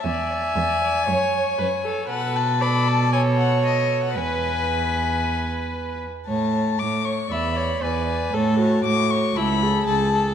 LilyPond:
<<
  \new Staff \with { instrumentName = "Violin" } { \time 4/4 \key a \major \tempo 4 = 116 gis''1 | fis''8 a''8 b''8 a''8 gis''8 fis''8 dis''8. fis''16 | gis''2.~ gis''8 r8 | a''4 d'''8 cis'''8 b''4 gis''4 |
a''4 d'''8 cis'''8 b''4 a''4 | }
  \new Staff \with { instrumentName = "Violin" } { \time 4/4 \key a \major d''8 d''8 d''8 d''8 cis''8 cis''8 cis''8 cis''8 | a'4 a'4 a'4 a'4 | b'2.~ b'8 r8 | cis''8 cis''8 cis''8 cis''8 d''8 d''8 d''8 d''8 |
cis''8 cis''8 cis''8 cis''8 a'8 a'8 a'8 a'8 | }
  \new Staff \with { instrumentName = "Viola" } { \time 4/4 \key a \major e''2 cis''4 b'8 a'8 | b'4 d''4 cis''2 | b'2.~ b'8 r8 | r2 e''8 cis''8 b'4 |
a'8 fis'4. e'8 gis'4. | }
  \new Staff \with { instrumentName = "Cello" } { \clef bass \time 4/4 \key a \major e,4 e,4 fis,4 fis,4 | b,1 | e,2.~ e,8 r8 | a,4 a,4 e,4 e,4 |
a,4 a,4 cis,4 cis,4 | }
>>